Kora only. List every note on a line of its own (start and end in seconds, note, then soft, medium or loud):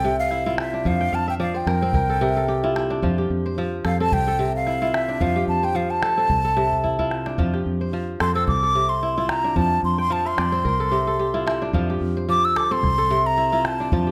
0.00 1.45 C4 medium
0.00 0.19 F4 medium
0.00 0.23 G4 medium
0.00 1.23 A4 medium
0.00 0.28 C5 medium
0.04 0.90 C3 medium
0.31 0.46 E4 medium
0.46 0.92 E4 medium
0.46 1.34 F4 medium
0.74 2.42 D4 medium
0.86 1.39 F3 medium
1.01 1.94 G5 medium
1.13 2.12 F5 medium
1.28 2.31 E5 medium
1.40 1.99 F3 medium
1.40 2.51 D5 medium
1.54 1.82 C5 medium
1.67 1.94 A#4 medium
1.82 3.62 C4 medium
1.82 3.01 C5 medium
1.94 2.21 A#4 medium
2.10 2.36 A4 medium
2.21 3.08 C3 medium
2.21 3.48 A#4 medium
2.37 3.68 A4 medium
2.48 3.18 G4 medium
2.64 2.76 E4 medium
2.64 3.03 F4 medium
2.76 3.09 E4 medium
2.90 4.58 D4 medium
3.03 3.57 F3 medium
3.03 4.54 F4 medium
3.18 4.59 G4 medium
3.46 4.64 C5 medium
3.58 4.17 F3 medium
3.85 4.00 A4 medium
4.00 5.80 C4 medium
4.00 4.27 A4 medium
4.28 5.59 A4 medium
4.39 5.26 C3 medium
4.67 4.81 E4 medium
4.82 5.27 E4 medium
4.82 5.21 F4 medium
5.09 6.77 D4 medium
5.21 5.74 F3 medium
5.21 6.73 F4 medium
5.36 6.77 G4 medium
5.63 6.82 C5 medium
5.75 6.35 F3 medium
6.03 6.17 A4 medium
6.17 7.97 C4 medium
6.17 6.44 A4 medium
6.45 7.76 A4 medium
6.57 7.43 C3 medium
6.84 6.98 E4 medium
6.99 7.44 E4 medium
6.99 7.38 F4 medium
7.26 8.94 D4 medium
7.38 7.92 F3 medium
7.38 8.90 F4 medium
7.54 8.95 G4 medium
7.81 9.00 C5 medium
7.93 8.52 F3 medium
8.20 8.35 A4 medium
8.35 10.15 C4 medium
8.35 8.63 A4 medium
8.63 9.95 A4 medium
8.75 9.61 C3 medium
9.03 9.17 E4 medium
9.18 9.62 E4 medium
9.18 10.31 F4 medium
9.44 11.12 D4 medium
9.56 10.09 F3 medium
9.98 10.91 G5 medium
10.10 10.70 F3 medium
10.10 11.10 F5 medium
10.25 11.29 E5 medium
10.38 11.49 D5 medium
10.52 12.32 C4 medium
10.52 11.71 C5 medium
10.65 11.13 A#4 medium
10.80 11.07 A4 medium
10.91 11.79 C3 medium
10.91 11.19 G4 medium
11.07 12.39 A4 medium
11.19 11.89 G4 medium
11.34 11.46 E4 medium
11.34 11.74 F4 medium
11.46 11.80 E4 medium
11.62 13.30 D4 medium
11.74 12.27 F3 medium
11.74 13.26 F4 medium
11.90 13.31 G4 medium
12.17 13.36 C5 medium
12.29 12.88 F3 medium
12.56 12.71 A4 medium
12.71 14.11 C4 medium
12.71 12.98 A4 medium
12.98 14.11 A4 medium
13.11 13.97 C3 medium
13.38 13.52 E4 medium
13.52 13.98 E4 medium
13.52 13.92 F4 medium
13.80 14.11 D4 medium
13.93 14.11 F3 medium
13.93 14.11 F4 medium
14.07 14.11 G4 medium